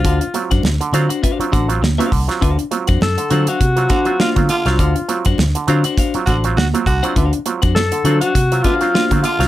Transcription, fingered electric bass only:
X:1
M:4/4
L:1/16
Q:"Swing 16ths" 1/4=101
K:Dmix
V:1 name="Fingered electric bass" clef=bass
D,, z2 F,, D,, z D, z3 A,,,2 D,, z C,, z | D,, z2 ^E,, F,, z D, z C,2 z3 D, z C,, | D,, z2 F,, D,, z D, z3 A,,,2 D,, z C,, z | D,, z2 ^E,, F,, z D, z C,2 z3 D, z C,, |]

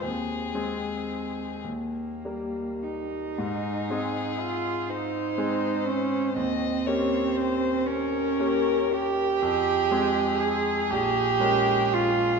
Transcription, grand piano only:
X:1
M:6/8
L:1/8
Q:3/8=39
K:Ab
V:1 name="Grand piano"
E,, [A,CA]2 E,, [G,B,B]2 | A,, [A,CA]3 [A,CA]2 | E,, [B,DG]3 [B,DG]2 | F,, [A,CA]2 B,,, [A,DB]2 |]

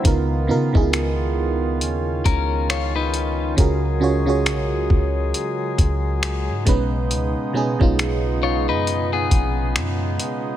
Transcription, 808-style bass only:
X:1
M:4/4
L:1/16
Q:"Swing 16ths" 1/4=68
K:Blyd
V:1 name="808-style bass" clef=bass
C,,2 C, C,,4- C,, D,,2 C,,6 | C,,4 B,,, C,, C,,2 z2 C,,3 G,, B,,,2 | C,, z2 B,,,4 F,,3 A,,,2 F,,2 z2 |]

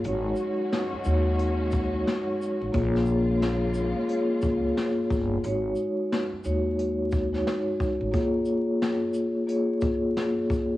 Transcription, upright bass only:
X:1
M:4/4
L:1/16
Q:"Swing 16ths" 1/4=89
K:Bbm
V:1 name="Upright bass" clef=bass
A,,,2 z4 E,,6 z3 =A,,, | B,,,6- B,,, z3 D,,2 z2 =G,,,2 | A,,,2 z4 E,,6 z3 =A,,, | z16 |]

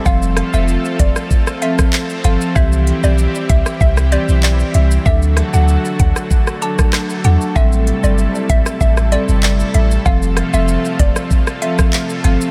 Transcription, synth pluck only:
X:1
M:4/4
L:1/16
Q:1/4=96
K:Flyd
V:1 name="Synth pluck"
f2 z e2 z d2 z2 e z3 f z | e z2 d z2 e z e z d z d z e z | e2 z ^f2 z f2 z2 a z3 f z | e z2 d z2 e z e z d z d z e z |
f2 z e2 z d2 z2 e z3 f z |]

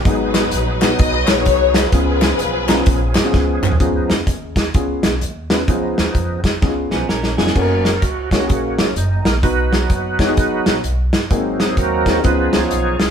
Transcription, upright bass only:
X:1
M:4/4
L:1/8
Q:"Swing" 1/4=128
K:C#mix
V:1 name="Upright bass" clef=bass
G,,,2 A,,,2 B,,, A,,, ^B,,,2 | C,,2 B,,,2 A,,, G,,, C,, A,,, | C,, E,, D,,2 C,, B,,, D,,2 | C,, D,, E,,2 C,, B,,, A,,, E,,, |
F,,,2 C,,2 A,,, G,,, F,,, A,,, | B,,,2 F,,,2 G,,, A,,, B,,, z | G,,,2 D,,2 C,, C,, B,,, ^B,,, |]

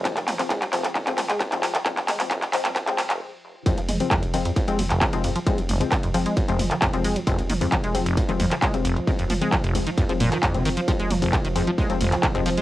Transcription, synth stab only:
X:1
M:4/4
L:1/16
Q:1/4=133
K:Fm
V:1 name="Synth stab" clef=bass
[F,A,C] z2 [F,A,C]2 z [F,A,C]2 z [F,A,C] z3 [F,A,C]2 z | [F,A,C] z2 [F,A,C]2 z [F,A,C]2 z [F,A,C] z6 | [F,A,C] z2 [F,A,C]2 z [F,A,C]2 z [F,A,C] z3 [F,A,C]2 z | [F,A,C] z2 [F,A,C]2 z [F,A,C]2 z [F,A,C] z3 [F,A,C]2 z |
[F,A,C] z2 [F,A,C]2 z [F,A,C]2 z [F,A,C] z3 [F,A,C]2 z | [F,A,C] z2 [F,A,C]2 z [F,A,C]2 z [F,A,C] z3 [F,A,C]2 z | [F,A,C] z2 [F,A,C]2 z [F,A,C]2 z [F,A,C] z3 [F,A,C]2 z |]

